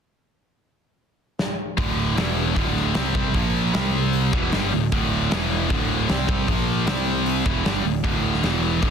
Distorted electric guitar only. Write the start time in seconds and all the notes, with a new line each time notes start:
1.77 D2 A2 D3
2.17 E2 B2 E3
2.57 D2 A2 D3
2.95 C3 G3 C4
3.14 C3 G3 C4
3.34 A#2 F3 A#3
3.73 C3 G3 C4
4.33 E2 B2 E3
4.52 G2 D3 G3
4.72 D2 A2
4.92 D2 A2 D3
5.31 E2 B2 E3
5.70 D2 A2 D3
6.08 C3 G3 C4
6.27 C3 G3 C4
6.48 A#2 F3 A#3
6.87 C3 G3 C4
7.46 E2 B2 E3
7.65 G2 D3 G3
7.85 D2 A2
8.04 D2 A2 D3
8.44 E2 B2 E3
8.82 D2 A2 D3